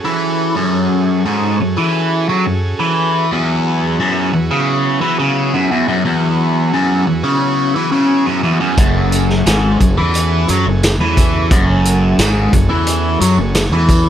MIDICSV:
0, 0, Header, 1, 5, 480
1, 0, Start_track
1, 0, Key_signature, 3, "minor"
1, 0, Tempo, 684151
1, 389, Time_signature, 4, 2, 24, 8
1, 9886, End_track
2, 0, Start_track
2, 0, Title_t, "Transistor combo organ"
2, 0, Program_c, 0, 18
2, 0, Note_on_c, 0, 61, 62
2, 0, Note_on_c, 0, 66, 59
2, 0, Note_on_c, 0, 68, 57
2, 0, Note_on_c, 0, 69, 72
2, 2291, Note_off_c, 0, 68, 0
2, 2292, Note_off_c, 0, 61, 0
2, 2293, Note_off_c, 0, 69, 0
2, 2329, Note_on_c, 0, 59, 64
2, 2330, Note_on_c, 0, 54, 64
2, 2332, Note_on_c, 0, 64, 57
2, 2332, Note_on_c, 0, 68, 70
2, 6140, Note_off_c, 0, 54, 0
2, 6140, Note_off_c, 0, 59, 0
2, 6141, Note_off_c, 0, 64, 0
2, 6141, Note_off_c, 0, 68, 0
2, 6171, Note_on_c, 0, 61, 61
2, 6172, Note_on_c, 0, 69, 68
2, 6173, Note_on_c, 0, 68, 69
2, 9886, Note_off_c, 0, 61, 0
2, 9886, Note_off_c, 0, 66, 0
2, 9886, Note_off_c, 0, 68, 0
2, 9886, Note_off_c, 0, 69, 0
2, 9886, End_track
3, 0, Start_track
3, 0, Title_t, "Overdriven electric guitar"
3, 0, Program_c, 1, 29
3, 31, Note_on_c, 1, 52, 97
3, 384, Note_off_c, 1, 52, 0
3, 394, Note_on_c, 1, 42, 105
3, 867, Note_off_c, 1, 42, 0
3, 881, Note_on_c, 1, 44, 91
3, 1110, Note_off_c, 1, 44, 0
3, 1124, Note_on_c, 1, 42, 73
3, 1239, Note_off_c, 1, 42, 0
3, 1240, Note_on_c, 1, 52, 101
3, 1591, Note_off_c, 1, 52, 0
3, 1607, Note_on_c, 1, 54, 102
3, 1714, Note_off_c, 1, 54, 0
3, 1724, Note_on_c, 1, 42, 71
3, 1912, Note_off_c, 1, 42, 0
3, 1961, Note_on_c, 1, 52, 98
3, 2312, Note_off_c, 1, 52, 0
3, 2324, Note_on_c, 1, 40, 106
3, 2795, Note_off_c, 1, 40, 0
3, 2804, Note_on_c, 1, 42, 101
3, 3035, Note_off_c, 1, 42, 0
3, 3040, Note_on_c, 1, 40, 70
3, 3160, Note_off_c, 1, 40, 0
3, 3164, Note_on_c, 1, 49, 96
3, 3514, Note_off_c, 1, 49, 0
3, 3517, Note_on_c, 1, 52, 97
3, 3631, Note_off_c, 1, 52, 0
3, 3643, Note_on_c, 1, 49, 96
3, 3875, Note_off_c, 1, 49, 0
3, 3885, Note_on_c, 1, 42, 101
3, 3996, Note_off_c, 1, 42, 0
3, 4008, Note_on_c, 1, 40, 94
3, 4118, Note_off_c, 1, 40, 0
3, 4125, Note_on_c, 1, 42, 101
3, 4236, Note_off_c, 1, 42, 0
3, 4244, Note_on_c, 1, 40, 103
3, 4716, Note_off_c, 1, 40, 0
3, 4724, Note_on_c, 1, 42, 89
3, 4956, Note_off_c, 1, 42, 0
3, 4960, Note_on_c, 1, 40, 71
3, 5076, Note_on_c, 1, 49, 91
3, 5081, Note_off_c, 1, 40, 0
3, 5432, Note_off_c, 1, 49, 0
3, 5442, Note_on_c, 1, 52, 89
3, 5554, Note_off_c, 1, 52, 0
3, 5557, Note_on_c, 1, 49, 93
3, 5792, Note_off_c, 1, 49, 0
3, 5799, Note_on_c, 1, 42, 97
3, 5913, Note_off_c, 1, 42, 0
3, 5916, Note_on_c, 1, 40, 99
3, 6032, Note_off_c, 1, 40, 0
3, 6034, Note_on_c, 1, 42, 91
3, 6149, Note_off_c, 1, 42, 0
3, 6158, Note_on_c, 1, 42, 102
3, 6632, Note_off_c, 1, 42, 0
3, 6639, Note_on_c, 1, 44, 94
3, 6872, Note_off_c, 1, 44, 0
3, 6879, Note_on_c, 1, 42, 73
3, 6998, Note_on_c, 1, 52, 96
3, 7000, Note_off_c, 1, 42, 0
3, 7351, Note_off_c, 1, 52, 0
3, 7364, Note_on_c, 1, 54, 92
3, 7474, Note_off_c, 1, 54, 0
3, 7485, Note_on_c, 1, 42, 67
3, 7673, Note_off_c, 1, 42, 0
3, 7724, Note_on_c, 1, 52, 97
3, 8072, Note_off_c, 1, 52, 0
3, 8077, Note_on_c, 1, 42, 102
3, 8548, Note_off_c, 1, 42, 0
3, 8557, Note_on_c, 1, 44, 98
3, 8787, Note_off_c, 1, 44, 0
3, 8798, Note_on_c, 1, 42, 71
3, 8907, Note_on_c, 1, 52, 96
3, 8915, Note_off_c, 1, 42, 0
3, 9261, Note_off_c, 1, 52, 0
3, 9267, Note_on_c, 1, 54, 100
3, 9381, Note_off_c, 1, 54, 0
3, 9390, Note_on_c, 1, 42, 70
3, 9581, Note_off_c, 1, 42, 0
3, 9629, Note_on_c, 1, 52, 102
3, 9886, Note_off_c, 1, 52, 0
3, 9886, End_track
4, 0, Start_track
4, 0, Title_t, "Fingered electric bass"
4, 0, Program_c, 2, 33
4, 6158, Note_on_c, 2, 30, 85
4, 6611, Note_off_c, 2, 30, 0
4, 6640, Note_on_c, 2, 32, 92
4, 6863, Note_off_c, 2, 32, 0
4, 6880, Note_on_c, 2, 30, 75
4, 6992, Note_off_c, 2, 30, 0
4, 7004, Note_on_c, 2, 40, 90
4, 7336, Note_off_c, 2, 40, 0
4, 7363, Note_on_c, 2, 42, 88
4, 7472, Note_off_c, 2, 42, 0
4, 7480, Note_on_c, 2, 30, 74
4, 7702, Note_off_c, 2, 30, 0
4, 7718, Note_on_c, 2, 40, 93
4, 8052, Note_off_c, 2, 40, 0
4, 8075, Note_on_c, 2, 30, 95
4, 8526, Note_off_c, 2, 30, 0
4, 8549, Note_on_c, 2, 32, 97
4, 8774, Note_off_c, 2, 32, 0
4, 8789, Note_on_c, 2, 30, 74
4, 8902, Note_off_c, 2, 30, 0
4, 8907, Note_on_c, 2, 40, 91
4, 9242, Note_off_c, 2, 40, 0
4, 9268, Note_on_c, 2, 42, 90
4, 9379, Note_off_c, 2, 42, 0
4, 9383, Note_on_c, 2, 30, 80
4, 9608, Note_off_c, 2, 30, 0
4, 9622, Note_on_c, 2, 40, 96
4, 9886, Note_off_c, 2, 40, 0
4, 9886, End_track
5, 0, Start_track
5, 0, Title_t, "Drums"
5, 6156, Note_on_c, 9, 42, 88
5, 6158, Note_on_c, 9, 36, 103
5, 6227, Note_off_c, 9, 42, 0
5, 6228, Note_off_c, 9, 36, 0
5, 6399, Note_on_c, 9, 42, 66
5, 6401, Note_on_c, 9, 54, 66
5, 6469, Note_off_c, 9, 42, 0
5, 6471, Note_off_c, 9, 54, 0
5, 6523, Note_on_c, 9, 38, 31
5, 6593, Note_off_c, 9, 38, 0
5, 6640, Note_on_c, 9, 54, 95
5, 6642, Note_on_c, 9, 42, 93
5, 6646, Note_on_c, 9, 38, 108
5, 6710, Note_off_c, 9, 54, 0
5, 6712, Note_off_c, 9, 42, 0
5, 6716, Note_off_c, 9, 38, 0
5, 6880, Note_on_c, 9, 36, 77
5, 6881, Note_on_c, 9, 42, 65
5, 6884, Note_on_c, 9, 54, 30
5, 6950, Note_off_c, 9, 36, 0
5, 6951, Note_off_c, 9, 42, 0
5, 6954, Note_off_c, 9, 54, 0
5, 7114, Note_on_c, 9, 54, 73
5, 7121, Note_on_c, 9, 42, 85
5, 7184, Note_off_c, 9, 54, 0
5, 7191, Note_off_c, 9, 42, 0
5, 7355, Note_on_c, 9, 54, 75
5, 7359, Note_on_c, 9, 42, 61
5, 7425, Note_off_c, 9, 54, 0
5, 7429, Note_off_c, 9, 42, 0
5, 7600, Note_on_c, 9, 54, 90
5, 7601, Note_on_c, 9, 42, 86
5, 7605, Note_on_c, 9, 38, 104
5, 7670, Note_off_c, 9, 54, 0
5, 7671, Note_off_c, 9, 42, 0
5, 7675, Note_off_c, 9, 38, 0
5, 7838, Note_on_c, 9, 36, 87
5, 7839, Note_on_c, 9, 42, 63
5, 7845, Note_on_c, 9, 54, 69
5, 7908, Note_off_c, 9, 36, 0
5, 7910, Note_off_c, 9, 42, 0
5, 7916, Note_off_c, 9, 54, 0
5, 8075, Note_on_c, 9, 42, 87
5, 8076, Note_on_c, 9, 36, 109
5, 8146, Note_off_c, 9, 36, 0
5, 8146, Note_off_c, 9, 42, 0
5, 8316, Note_on_c, 9, 42, 69
5, 8316, Note_on_c, 9, 54, 70
5, 8386, Note_off_c, 9, 54, 0
5, 8387, Note_off_c, 9, 42, 0
5, 8551, Note_on_c, 9, 42, 92
5, 8555, Note_on_c, 9, 38, 111
5, 8558, Note_on_c, 9, 54, 95
5, 8621, Note_off_c, 9, 42, 0
5, 8625, Note_off_c, 9, 38, 0
5, 8628, Note_off_c, 9, 54, 0
5, 8791, Note_on_c, 9, 36, 83
5, 8791, Note_on_c, 9, 42, 68
5, 8804, Note_on_c, 9, 54, 32
5, 8861, Note_off_c, 9, 36, 0
5, 8861, Note_off_c, 9, 42, 0
5, 8874, Note_off_c, 9, 54, 0
5, 9027, Note_on_c, 9, 42, 86
5, 9041, Note_on_c, 9, 54, 72
5, 9097, Note_off_c, 9, 42, 0
5, 9111, Note_off_c, 9, 54, 0
5, 9271, Note_on_c, 9, 42, 69
5, 9278, Note_on_c, 9, 54, 82
5, 9341, Note_off_c, 9, 42, 0
5, 9348, Note_off_c, 9, 54, 0
5, 9504, Note_on_c, 9, 42, 93
5, 9508, Note_on_c, 9, 38, 106
5, 9511, Note_on_c, 9, 54, 92
5, 9574, Note_off_c, 9, 42, 0
5, 9578, Note_off_c, 9, 38, 0
5, 9581, Note_off_c, 9, 54, 0
5, 9743, Note_on_c, 9, 36, 90
5, 9744, Note_on_c, 9, 42, 71
5, 9754, Note_on_c, 9, 54, 79
5, 9814, Note_off_c, 9, 36, 0
5, 9814, Note_off_c, 9, 42, 0
5, 9824, Note_off_c, 9, 54, 0
5, 9886, End_track
0, 0, End_of_file